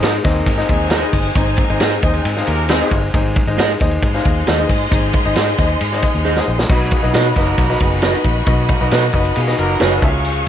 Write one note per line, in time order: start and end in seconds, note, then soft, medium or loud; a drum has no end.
0.00 0.21 G#2 medium
0.00 0.19 G#2 loud
0.00 0.21 G#3 medium
0.00 0.21 C4 loud
0.00 0.16 D#4 medium
0.00 0.15 D#4 medium
0.00 0.21 D#4 medium
0.00 0.16 G#4 medium
0.00 0.15 G#4 medium
0.00 0.16 C5 medium
0.00 0.15 C5 loud
0.00 0.21 C5 loud
0.00 0.16 D#5 loud
0.00 0.16 D#5 medium
0.00 snare loud
0.00 ride medium
0.00 tambourine loud
0.24 0.41 D#2 medium
0.24 0.67 D#3 medium
0.24 0.67 A#3 medium
0.24 0.67 C4 medium
0.24 0.49 D#4 medium
0.24 0.49 G#4 medium
0.24 0.67 A#4 medium
0.24 0.49 C5 medium
0.24 0.49 D#5 loud
0.24 kick loud
0.24 snare soft
0.24 ride soft
0.36 ride soft
0.46 0.63 G#2 loud
0.46 3.10 D#4 medium
0.46 3.10 C5 medium
0.46 3.10 G#5 medium
0.46 kick loud
0.46 ride medium
0.46 tambourine medium
0.58 0.91 D#4 medium
0.58 0.91 G#4 medium
0.58 0.91 C5 medium
0.58 0.91 D#5 loud
0.58 snare soft
0.69 1.02 D#2 medium
0.69 1.11 D#3 medium
0.69 1.12 G#3 loud
0.69 1.12 C4 medium
0.69 1.12 G#4 loud
0.69 kick medium
0.69 ride medium
0.90 1.04 D#4 medium
0.90 1.04 G#4 medium
0.90 1.04 C5 medium
0.90 1.05 D#5 medium
0.90 snare loud
0.90 ride medium
0.90 tambourine medium
1.01 1.27 D#4 medium
1.01 1.27 G#4 medium
1.01 1.27 C5 medium
1.01 1.27 D#5 medium
1.13 1.30 G1 loud
1.13 kick medium
1.13 open hi-hat medium
1.13 ride medium
1.35 1.60 G#1 loud
1.35 1.99 G#2 medium
1.35 1.61 D#4 medium
1.35 1.61 G#4 medium
1.35 1.61 C5 medium
1.35 1.61 D#5 medium
1.35 kick loud
1.35 hi-hat pedal medium
1.35 ride medium
1.35 tambourine medium
1.57 2.00 D#3 medium
1.57 2.00 A#3 medium
1.57 2.00 C4 medium
1.57 2.00 A#4 medium
1.57 kick loud
1.57 ride medium
1.70 1.78 G#1 medium
1.70 1.94 D#4 medium
1.70 1.94 G#4 medium
1.70 1.95 C5 medium
1.70 1.95 D#5 loud
1.70 ride soft
1.80 1.97 G#2 loud
1.80 1.93 D#4 loud
1.80 1.94 G#4 loud
1.80 1.94 C5 loud
1.80 1.94 D#5 loud
1.80 snare loud
1.80 ride medium
1.80 tambourine loud
2.02 2.19 D#2 medium
2.02 2.21 G#3 medium
2.02 2.21 C4 medium
2.02 2.21 D#4 medium
2.02 2.28 D#4 medium
2.02 2.28 G#4 medium
2.02 2.21 C5 medium
2.02 2.29 C5 medium
2.02 2.28 D#5 loud
2.02 kick medium
2.02 ride soft
2.14 ride soft
2.24 2.42 G#2 loud
2.24 2.42 D#3 medium
2.24 2.42 G#3 medium
2.24 2.43 C4 medium
2.24 2.42 G#4 medium
2.24 ride medium
2.24 tambourine medium
2.36 2.70 D#4 medium
2.36 2.70 G#4 medium
2.36 2.70 C5 medium
2.36 2.70 F5 loud
2.36 snare soft
2.47 2.80 D#2 medium
2.47 2.65 A#3 loud
2.47 2.65 G4 loud
2.47 2.65 A#4 loud
2.47 ride medium
2.69 3.01 D#3 loud
2.69 3.01 G#3 loud
2.69 3.01 C4 loud
2.69 2.82 D#4 loud
2.69 3.01 G#4 loud
2.69 2.83 G#4 loud
2.69 2.83 C5 medium
2.69 2.83 D#5 loud
2.69 snare loud
2.69 ride medium
2.69 tambourine medium
2.81 3.06 D#4 medium
2.81 3.06 G#4 medium
2.81 3.06 C5 medium
2.81 3.06 D#5 loud
2.91 3.08 G1 loud
2.91 kick medium
2.91 ride medium
3.14 3.39 G#1 loud
3.14 3.77 G#2 medium
3.14 3.39 D#4 medium
3.14 3.39 G#4 medium
3.14 3.39 C5 medium
3.14 3.39 D#5 loud
3.14 kick loud
3.14 ride medium
3.14 tambourine medium
3.36 kick loud
3.36 ride medium
3.47 3.56 G#1 medium
3.47 3.72 D#4 medium
3.47 3.72 G#4 medium
3.47 3.73 C5 medium
3.47 3.72 D#5 loud
3.47 ride soft
3.58 3.75 G#2 loud
3.58 3.71 D#4 medium
3.58 3.71 G#4 medium
3.58 3.71 C5 medium
3.58 3.71 D#5 loud
3.58 snare loud
3.58 ride medium
3.58 tambourine loud
3.80 3.98 D#2 medium
3.80 4.06 D#4 medium
3.80 4.06 G#4 medium
3.80 4.06 C5 medium
3.80 4.06 D#5 loud
3.80 kick medium
3.80 snare soft
3.80 ride medium
3.91 ride soft
4.02 4.19 G#2 loud
4.02 6.66 G#4 medium
4.02 6.65 D#5 medium
4.02 6.65 C6 loud
4.02 kick loud
4.02 ride medium
4.02 tambourine medium
4.14 4.47 D#4 medium
4.14 4.47 G#4 medium
4.14 4.47 C5 medium
4.14 4.47 F5 loud
4.14 snare soft
4.25 4.42 D#2 loud
4.25 kick loud
4.25 ride medium
4.47 4.64 D#2 loud
4.47 4.60 D#4 medium
4.47 4.60 G#4 medium
4.47 4.61 C5 medium
4.47 4.61 D#5 medium
4.47 snare loud
4.47 ride medium
4.47 tambourine medium
4.59 4.84 D#4 medium
4.59 4.84 G#4 medium
4.59 4.84 C5 medium
4.59 4.84 D#5 loud
4.69 4.86 G#2 loud
4.69 kick medium
4.69 open hi-hat medium
4.69 ride medium
4.91 5.17 G#1 loud
4.91 5.54 G#2 medium
4.91 5.17 D#4 medium
4.91 5.16 G#4 medium
4.91 5.17 C5 medium
4.91 5.16 D#5 medium
4.91 kick loud
4.91 hi-hat pedal medium
4.91 ride medium
4.91 tambourine medium
5.13 kick loud
5.13 ride medium
5.25 5.34 G#1 medium
5.25 5.50 D#4 medium
5.25 5.50 G#4 medium
5.25 5.50 C5 medium
5.25 5.50 D#5 loud
5.25 ride soft
5.36 5.53 G#2 loud
5.36 5.49 D#4 loud
5.36 5.49 G#4 loud
5.36 5.49 C5 loud
5.36 5.50 D#5 loud
5.36 snare loud
5.36 ride medium
5.36 tambourine loud
5.58 5.75 D#2 medium
5.58 5.84 D#4 medium
5.58 5.84 G#4 medium
5.58 5.84 C5 medium
5.58 5.84 D#5 loud
5.58 kick medium
5.58 snare soft
5.58 ride medium
5.68 ride soft
5.81 6.06 G#2 loud
5.81 ride medium
5.81 tambourine medium
5.92 6.25 D#4 medium
5.92 6.26 G#4 medium
5.92 6.26 C5 medium
5.92 5.98 D5 medium
5.92 snare soft
5.98 6.28 D#5 loud
6.02 kick loud
6.02 ride medium
6.15 6.39 D#2 loud
6.25 6.38 D#4 medium
6.25 6.38 G#4 medium
6.25 6.38 C5 medium
6.25 6.38 D#5 medium
6.25 tambourine medium
6.37 6.62 D#4 medium
6.37 6.62 G#4 medium
6.37 6.62 C5 medium
6.37 6.62 D#5 medium
6.37 snare medium
6.48 6.64 A#1 medium
6.59 snare loud
6.70 6.94 B1 loud
6.70 7.33 B2 medium
6.70 6.95 D#4 medium
6.70 6.95 F#4 medium
6.70 9.99 F#4 medium
6.70 6.95 B4 medium
6.70 9.99 D#5 medium
6.70 6.95 D#5 loud
6.70 9.99 B5 medium
6.70 kick loud
6.70 crash medium
6.70 tambourine medium
6.91 7.10 G#3 medium
6.91 7.10 F4 medium
6.91 7.10 G#4 medium
6.91 kick loud
6.91 ride medium
7.03 7.12 B1 medium
7.03 7.28 D#4 medium
7.03 7.28 F#4 medium
7.03 7.28 B4 medium
7.03 7.28 D#5 medium
7.13 7.31 B2 loud
7.13 7.33 F#3 medium
7.13 7.33 B3 loud
7.13 7.27 D#4 medium
7.13 7.33 D#4 loud
7.13 7.27 F#4 loud
7.13 7.27 B4 medium
7.13 7.33 B4 loud
7.13 7.27 D#5 loud
7.13 snare loud
7.13 ride medium
7.13 tambourine loud
7.35 7.53 F#1 medium
7.35 7.78 F#3 loud
7.35 7.78 A#3 loud
7.35 7.78 D#4 medium
7.35 7.62 D#4 medium
7.35 7.61 F#4 medium
7.35 7.78 A#4 loud
7.35 7.62 B4 medium
7.35 7.62 D#5 loud
7.35 kick loud
7.35 snare soft
7.35 ride soft
7.47 ride soft
7.57 7.75 B1 loud
7.57 kick medium
7.57 ride medium
7.57 tambourine medium
7.69 8.03 D#4 medium
7.69 8.03 F#4 medium
7.69 8.03 B4 medium
7.69 8.03 D#5 loud
7.69 snare soft
7.80 8.14 F#1 medium
7.80 8.23 D#3 medium
7.80 8.23 G#3 medium
7.80 8.23 B3 medium
7.80 8.23 G#4 loud
7.80 kick loud
7.80 ride medium
8.01 8.15 D#4 medium
8.01 8.16 F#4 medium
8.01 8.16 B4 medium
8.01 8.16 D#5 medium
8.01 snare loud
8.01 ride medium
8.01 tambourine medium
8.13 8.38 D#4 medium
8.13 8.39 F#4 medium
8.13 8.38 B4 medium
8.13 8.39 D#5 medium
8.25 8.41 A#1 loud
8.25 kick medium
8.25 ride medium
8.46 8.72 B1 medium
8.46 9.10 B2 medium
8.46 8.72 D#4 medium
8.46 8.72 F#4 medium
8.46 8.72 B4 medium
8.46 8.72 D#5 loud
8.46 kick loud
8.46 ride medium
8.46 tambourine medium
8.69 9.12 F#3 medium
8.69 9.12 A#3 medium
8.69 9.11 D#4 medium
8.69 9.12 A#4 medium
8.69 kick loud
8.69 ride medium
8.81 8.89 B1 medium
8.81 9.06 D#4 medium
8.81 9.05 F#4 medium
8.81 9.06 B4 medium
8.81 9.05 D#5 medium
8.90 9.08 B2 loud
8.90 9.05 D#4 medium
8.90 9.05 F#4 loud
8.90 9.05 B4 loud
8.90 9.05 D#5 loud
8.90 snare loud
8.90 ride medium
8.90 tambourine loud
9.13 9.30 F#1 medium
9.13 9.32 F#3 medium
9.13 9.32 B3 medium
9.13 9.39 D#4 medium
9.13 9.32 D#4 medium
9.13 9.39 F#4 medium
9.13 9.32 B4 medium
9.13 9.39 B4 medium
9.13 9.39 D#5 loud
9.13 kick medium
9.13 ride medium
9.25 ride soft
9.35 9.53 B2 loud
9.35 9.54 G#3 medium
9.35 9.54 F4 medium
9.35 9.54 G#4 medium
9.35 ride medium
9.35 tambourine medium
9.47 9.80 D#4 medium
9.47 9.80 F#4 medium
9.47 9.80 B4 medium
9.47 9.81 D#5 loud
9.47 snare soft
9.58 9.75 F#1 medium
9.58 9.77 A#3 loud
9.58 9.77 F#4 loud
9.58 9.77 A#4 loud
9.58 ride medium
9.79 9.97 F#1 loud
9.79 10.13 F3 loud
9.79 10.12 G#3 loud
9.79 10.12 C#4 loud
9.79 9.93 D#4 loud
9.79 9.93 F#4 loud
9.79 10.12 G#4 loud
9.79 9.93 B4 loud
9.79 9.94 D#5 loud
9.79 snare loud
9.79 ride medium
9.79 tambourine medium
9.91 10.03 D#4 medium
9.91 10.03 F#4 medium
9.91 10.03 B4 medium
9.91 10.03 D#5 loud
10.02 10.44 C#2 loud
10.02 10.48 C#3 medium
10.02 10.48 F4 loud
10.02 10.48 G#4 medium
10.02 10.48 C#5 medium
10.02 10.09 E5 medium
10.02 10.48 F5 medium
10.02 10.48 C#6 loud
10.02 kick loud
10.02 ride medium
10.09 10.48 F5 loud
10.25 ride medium
10.25 tambourine medium